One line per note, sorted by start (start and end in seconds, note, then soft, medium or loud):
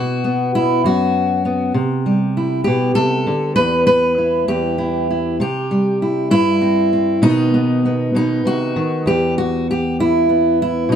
0.00 0.83 B2 medium
0.00 0.53 F#4 loud
0.24 1.44 B3 soft
0.55 0.84 E4 medium
0.84 1.71 F#2 medium
0.84 1.76 F#4 medium
1.45 1.71 B3 soft
1.74 2.66 C3 medium
2.06 5.40 G3 soft
2.37 2.64 E4 soft
2.64 2.96 B2 medium
2.64 2.95 G4 medium
2.95 3.27 C3 medium
2.95 3.55 A4 loud
3.27 3.57 D3 medium
3.56 4.47 E2 medium
3.56 3.85 B4 loud
3.87 4.48 B4 loud
4.18 4.77 E4 soft
4.48 5.40 E2 medium
4.48 5.40 G4 medium
4.78 5.09 E4 medium
5.11 5.37 E4 soft
5.40 6.31 C3 medium
5.40 6.02 G4 medium
5.71 7.23 G3 soft
6.02 6.30 E4 medium
6.30 7.19 G2 medium
6.30 7.23 E4 loud
6.61 6.92 C4 soft
6.93 7.19 C4 medium
7.22 8.14 B2 medium
7.22 8.75 D#3 medium
7.22 7.53 B3 soft
7.22 8.14 D#4 loud
7.54 7.84 B3 medium
7.85 9.03 B3 soft
8.15 8.45 B2 medium
8.15 9.07 D#4 medium
8.45 8.75 C3 medium
8.45 9.07 F#4 medium
8.76 9.06 D#3 medium
9.06 10.88 E2 medium
9.06 9.37 G4 medium
9.38 9.67 F#4 medium
9.71 9.99 G4 medium
10.00 10.60 E4 medium
10.29 10.89 B3 soft
10.62 10.90 E4 medium
10.89 10.96 B2 medium
10.89 10.96 D#4 medium